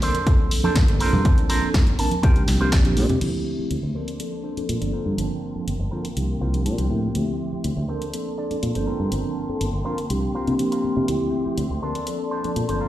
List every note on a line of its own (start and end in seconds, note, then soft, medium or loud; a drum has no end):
0.02 0.17 F3 medium
0.02 0.17 A#3 medium
0.02 0.17 C4 medium
0.02 0.17 D4 medium
0.02 0.51 D4 medium
0.02 0.51 A4 medium
0.02 0.17 A#4 medium
0.02 0.51 C5 loud
0.02 open hi-hat medium
0.02 tambourine loud
0.14 closed hi-hat medium
0.14 tambourine medium
0.14 high conga medium
0.26 0.61 F3 medium
0.26 0.61 A#3 medium
0.26 0.61 C4 medium
0.26 0.61 D4 medium
0.26 0.61 A4 medium
0.26 kick loud
0.26 closed hi-hat medium
0.26 tambourine soft
0.51 open hi-hat loud
0.51 tambourine medium
0.63 0.85 F3 medium
0.63 0.85 A#3 medium
0.63 0.85 C4 medium
0.63 0.85 D4 medium
0.63 0.76 D4 medium
0.63 0.85 A4 medium
0.63 0.76 A4 medium
0.63 0.76 C5 medium
0.63 muted fingered electric bass stroke soft
0.63 tambourine medium
0.63 high conga medium
0.75 0.84 A#2 medium
0.75 kick loud
0.75 snare loud
0.75 closed hi-hat medium
0.75 tambourine soft
0.88 1.00 G1 medium
0.88 1.22 F3 medium
0.88 1.22 A#3 medium
0.88 1.22 C4 medium
0.88 1.22 D4 medium
0.88 1.22 A4 loud
0.88 muted clean electric guitar stroke soft
0.88 closed hi-hat medium
1.00 1.40 F4 medium
1.00 1.40 A4 medium
1.00 1.40 A#4 medium
1.00 1.40 C5 loud
1.00 muted fingered electric bass stroke soft
1.00 open hi-hat medium
1.00 tambourine loud
1.13 1.21 G2 medium
1.13 tambourine medium
1.13 high conga medium
1.13 low conga medium
1.25 1.34 G1 medium
1.25 1.59 F3 loud
1.25 1.59 A#3 medium
1.25 1.59 C4 medium
1.25 1.59 D4 medium
1.25 1.59 A5 loud
1.25 kick loud
1.25 closed hi-hat medium
1.25 tambourine soft
1.38 closed hi-hat soft
1.49 1.68 F4 medium
1.49 1.68 A4 medium
1.49 1.68 A#4 medium
1.49 1.68 C5 loud
1.49 open hi-hat loud
1.49 tambourine medium
1.62 1.76 F3 medium
1.62 1.76 A#3 medium
1.62 1.76 C4 medium
1.62 1.76 D4 medium
1.62 1.77 A4 medium
1.62 muted fingered electric bass stroke soft
1.62 tambourine medium
1.74 1.83 G1 medium
1.74 kick loud
1.74 snare loud
1.74 closed hi-hat medium
1.87 1.95 G1 medium
1.87 muted clean electric guitar stroke soft
1.87 closed hi-hat soft
1.98 2.13 F3 medium
1.98 2.13 A#3 medium
1.98 2.14 C4 medium
1.98 2.14 D4 medium
1.98 2.14 A#4 medium
1.98 2.22 A5 medium
1.98 open hi-hat medium
1.98 tambourine loud
2.11 closed hi-hat medium
2.11 tambourine medium
2.11 high conga medium
2.23 2.41 C2 medium
2.23 2.57 F3 medium
2.23 2.58 C4 medium
2.23 2.58 D4 medium
2.23 2.42 F4 medium
2.23 2.58 G4 medium
2.23 2.42 A#4 medium
2.23 2.42 C5 medium
2.23 2.69 G5 medium
2.23 kick loud
2.23 closed hi-hat medium
2.23 tambourine soft
2.36 closed hi-hat soft
2.36 high conga medium
2.48 2.85 C2 medium
2.48 snare medium
2.48 open hi-hat loud
2.48 tambourine loud
2.60 2.82 F3 medium
2.60 2.82 A#3 medium
2.60 2.82 C4 medium
2.60 2.82 D4 medium
2.60 2.73 F4 medium
2.60 2.82 G4 medium
2.60 2.73 A#4 medium
2.60 2.72 C5 loud
2.60 tambourine soft
2.72 2.84 D5 medium
2.72 kick loud
2.72 snare loud
2.72 closed hi-hat medium
2.85 2.99 A#1 medium
2.85 3.19 F3 medium
2.85 3.19 A#3 medium
2.85 3.19 C4 medium
2.85 3.19 D4 medium
2.85 3.19 G4 loud
2.85 muted clean electric guitar stroke soft
2.85 closed hi-hat medium
2.85 high conga medium
2.97 3.06 A#2 medium
2.97 muted clean electric guitar stroke soft
2.97 open hi-hat medium
2.97 tambourine medium
3.09 3.18 C3 medium
3.09 closed hi-hat soft
3.09 tambourine soft
3.09 low conga medium
3.21 3.30 D2 medium
3.21 3.56 F3 medium
3.21 3.56 A3 medium
3.21 3.56 C4 medium
3.21 3.56 E4 medium
3.21 3.95 G4 medium
3.21 3.95 E5 medium
3.21 7.11 C6 medium
3.21 closed hi-hat medium
3.21 crash medium
3.58 3.73 F3 medium
3.58 3.73 A3 medium
3.58 3.73 C4 medium
3.58 3.73 E4 medium
3.58 3.73 G4 medium
3.58 muted fingered electric bass stroke soft
3.71 3.79 D2 medium
3.71 closed hi-hat medium
3.83 3.92 D2 medium
3.83 muted clean electric guitar stroke medium
3.95 4.10 F3 medium
3.95 4.10 A#3 medium
3.95 4.10 C4 medium
3.95 4.10 D4 medium
3.95 4.35 D4 medium
3.95 4.35 A4 medium
3.95 4.93 A4 medium
3.95 4.10 A#4 medium
3.95 4.35 C5 medium
3.95 4.93 D5 medium
4.08 closed hi-hat soft
4.19 4.54 F3 medium
4.19 4.54 A#3 medium
4.19 4.54 C4 medium
4.19 4.54 D4 medium
4.19 4.54 A4 medium
4.19 closed hi-hat medium
4.44 4.63 D4 loud
4.44 4.63 A4 medium
4.44 4.63 C5 loud
4.57 4.79 F3 medium
4.57 4.79 A#3 medium
4.57 4.79 C4 medium
4.57 4.79 D4 medium
4.57 4.79 A4 medium
4.57 muted fingered electric bass stroke soft
4.57 closed hi-hat soft
4.69 4.78 A#2 medium
4.69 closed hi-hat medium
4.81 4.93 G1 medium
4.81 5.15 F3 medium
4.81 5.15 A#3 medium
4.81 5.16 C4 medium
4.81 5.16 D4 medium
4.81 4.93 D4 medium
4.81 4.92 A4 medium
4.81 5.16 A4 medium
4.81 4.93 D5 medium
4.81 closed hi-hat medium
4.93 7.13 A#3 medium
4.93 5.62 F4 medium
4.93 5.63 A4 medium
4.93 5.63 A#4 medium
4.93 5.63 C5 medium
4.93 7.86 G5 medium
4.93 6.16 A5 medium
4.93 muted fingered electric bass stroke soft
5.06 5.14 G2 medium
5.17 5.27 G1 medium
5.17 5.52 F3 medium
5.17 5.52 A#3 medium
5.17 5.52 C4 medium
5.17 5.53 D4 medium
5.17 5.53 A5 medium
5.17 closed hi-hat medium
5.55 5.70 F3 medium
5.55 5.70 A#3 medium
5.55 5.70 C4 medium
5.55 5.70 D4 medium
5.55 5.70 A4 medium
5.55 muted fingered electric bass stroke soft
5.67 5.76 G1 medium
5.67 closed hi-hat medium
5.79 5.88 G1 medium
5.79 muted clean electric guitar stroke medium
5.91 6.07 F3 medium
5.91 6.07 A#3 medium
5.91 6.07 C4 medium
5.91 6.07 D4 medium
5.91 6.04 F4 loud
5.91 6.04 A4 medium
5.91 6.04 A#4 loud
5.91 6.07 A#4 medium
5.91 6.05 C5 loud
6.05 closed hi-hat soft
6.16 6.34 C2 medium
6.16 6.51 F3 medium
6.16 6.51 A#3 medium
6.16 6.51 C4 medium
6.16 6.51 D4 medium
6.16 6.51 G4 medium
6.16 muted clean electric guitar stroke soft
6.16 closed hi-hat medium
6.41 6.67 C2 medium
6.41 6.60 F4 medium
6.41 6.60 A#4 medium
6.41 6.60 C5 loud
6.41 6.64 F5 medium
6.54 6.75 F3 medium
6.54 6.76 A#3 medium
6.54 6.76 C4 medium
6.54 6.76 D4 medium
6.54 6.76 G4 medium
6.54 closed hi-hat soft
6.66 6.75 A#2 medium
6.66 6.89 A5 medium
6.66 closed hi-hat medium
6.78 6.87 C2 medium
6.78 7.12 F3 medium
6.78 7.12 A#3 medium
6.78 7.12 C4 medium
6.78 7.12 D4 medium
6.78 7.15 F4 medium
6.78 7.12 G4 medium
6.78 7.15 A#4 medium
6.78 7.15 C5 medium
6.78 closed hi-hat soft
6.90 7.08 A2 medium
6.90 7.13 G5 medium
7.15 7.24 D2 medium
7.15 7.49 F3 medium
7.15 7.49 A3 medium
7.15 7.49 C4 medium
7.15 7.50 E4 medium
7.15 7.88 G4 medium
7.15 7.50 G4 loud
7.15 7.88 E5 medium
7.15 12.77 C6 medium
7.15 closed hi-hat medium
7.52 7.66 F3 medium
7.52 7.67 A3 medium
7.52 7.67 C4 medium
7.52 7.67 E4 medium
7.52 7.67 G4 medium
7.52 muted fingered electric bass stroke soft
7.64 7.73 D2 medium
7.64 closed hi-hat medium
7.76 7.85 D2 medium
7.76 muted clean electric guitar stroke medium
7.88 8.04 F3 medium
7.88 8.04 A#3 medium
7.88 8.04 C4 medium
7.88 8.28 D4 medium
7.88 8.04 D4 medium
7.88 8.28 A4 medium
7.88 8.86 A4 medium
7.88 8.04 A#4 medium
7.88 8.28 C5 loud
7.88 8.86 D5 medium
8.02 closed hi-hat soft
8.13 8.48 F3 medium
8.13 8.48 A#3 medium
8.13 8.48 C4 medium
8.13 8.48 D4 medium
8.13 8.48 A4 medium
8.13 closed hi-hat medium
8.38 8.57 D4 medium
8.38 8.57 A4 medium
8.38 8.57 D5 loud
8.51 8.72 F3 medium
8.51 8.72 A#3 medium
8.51 8.72 C4 medium
8.51 8.73 D4 medium
8.51 8.73 A4 medium
8.51 muted fingered electric bass stroke soft
8.51 closed hi-hat soft
8.63 8.71 A#2 medium
8.63 closed hi-hat medium
8.75 8.87 G1 medium
8.75 9.09 F3 medium
8.75 9.09 A#3 medium
8.75 9.09 C4 medium
8.75 8.87 D4 medium
8.75 9.09 D4 medium
8.75 8.86 A4 medium
8.75 9.09 A4 medium
8.75 8.86 C5 medium
8.75 closed hi-hat soft
8.87 11.07 A#3 medium
8.87 9.56 F4 medium
8.87 9.56 A4 medium
8.87 9.56 A#4 medium
8.87 9.56 C5 loud
8.87 11.80 G5 medium
8.87 10.09 A5 medium
8.87 muted fingered electric bass stroke soft
9.00 9.08 G2 medium
9.12 9.21 G1 medium
9.12 9.46 F3 medium
9.12 9.46 A#3 medium
9.12 9.46 C4 medium
9.12 9.46 D4 medium
9.12 9.46 A5 medium
9.12 closed hi-hat medium
9.49 9.63 F3 medium
9.49 9.63 A#3 medium
9.49 9.63 C4 medium
9.49 9.63 D4 medium
9.49 9.64 A4 medium
9.49 muted fingered electric bass stroke soft
9.61 9.70 G1 medium
9.61 closed hi-hat medium
9.73 9.82 G1 medium
9.73 muted clean electric guitar stroke medium
9.85 10.00 F3 medium
9.85 10.00 A#3 medium
9.85 10.01 C4 medium
9.85 10.01 D4 medium
9.85 9.98 F4 loud
9.85 9.98 A4 medium
9.85 9.98 A#4 medium
9.85 10.01 A#4 medium
9.85 9.98 C5 loud
9.98 closed hi-hat soft
10.10 10.27 C2 medium
10.10 10.44 F3 medium
10.10 10.44 A#3 medium
10.10 10.45 C4 medium
10.10 10.44 D4 medium
10.10 10.45 G4 medium
10.10 muted clean electric guitar stroke soft
10.10 closed hi-hat medium
10.34 10.53 F4 loud
10.34 10.53 A#4 medium
10.34 10.53 C5 loud
10.47 10.56 C3 medium
10.47 10.57 F3 medium
10.47 10.58 A#3 medium
10.47 10.58 C4 medium
10.47 10.58 D4 medium
10.47 10.58 G4 medium
10.47 closed hi-hat soft
10.59 10.93 F3 medium
10.59 10.94 A#3 medium
10.59 10.94 C4 medium
10.59 10.94 D4 medium
10.59 10.94 G4 medium
10.59 closed hi-hat medium
10.72 11.08 F4 medium
10.72 11.08 A#4 medium
10.72 11.09 C5 medium
10.72 closed hi-hat soft
10.84 muted fingered electric bass stroke soft
10.96 11.05 C3 medium
10.96 11.05 F3 medium
10.96 11.06 A#3 medium
10.96 11.06 C4 medium
10.96 11.06 D4 medium
10.96 11.06 G4 medium
11.08 11.17 D2 medium
11.08 11.42 F3 medium
11.08 11.43 A3 medium
11.08 11.43 C4 medium
11.08 11.43 E4 medium
11.08 11.82 G4 medium
11.08 11.43 G4 loud
11.08 11.82 E5 medium
11.08 closed hi-hat medium
11.46 11.60 F3 medium
11.46 11.60 A3 medium
11.46 11.60 E4 medium
11.46 muted fingered electric bass stroke soft
11.58 11.66 D2 medium
11.58 closed hi-hat medium
11.70 11.79 D2 medium
11.70 muted clean electric guitar stroke medium
11.82 11.97 F3 medium
11.82 11.97 A#3 medium
11.82 11.97 C4 medium
11.82 11.97 D4 medium
11.82 12.22 D4 medium
11.82 12.80 A4 medium
11.82 12.22 A4 medium
11.82 11.98 A#4 medium
11.82 12.22 C5 loud
11.82 12.80 D5 medium
11.95 closed hi-hat soft
12.07 12.41 F3 medium
12.07 12.41 A#3 medium
12.07 12.41 C4 medium
12.07 12.41 D4 medium
12.07 12.42 A4 medium
12.07 closed hi-hat medium
12.31 12.50 D4 medium
12.31 12.50 A4 medium
12.31 12.50 C5 loud
12.44 12.66 F3 medium
12.44 12.66 A#3 medium
12.44 12.66 C4 medium
12.44 12.66 D4 medium
12.44 12.66 A4 medium
12.44 muted fingered electric bass stroke soft
12.44 closed hi-hat soft
12.56 12.65 A#2 medium
12.56 closed hi-hat medium
12.69 12.80 G1 medium
12.69 12.88 F3 medium
12.69 12.88 A#3 medium
12.69 12.88 C4 medium
12.69 12.81 D4 medium
12.69 12.88 D4 medium
12.69 12.80 A4 medium
12.69 12.88 A4 medium
12.69 12.80 C5 medium
12.69 closed hi-hat soft
12.80 12.88 A#3 medium
12.80 12.88 F4 medium
12.80 12.88 A4 medium
12.80 12.88 A#4 medium
12.80 12.88 C5 medium
12.80 12.88 A5 medium
12.80 12.88 C6 medium
12.80 muted fingered electric bass stroke soft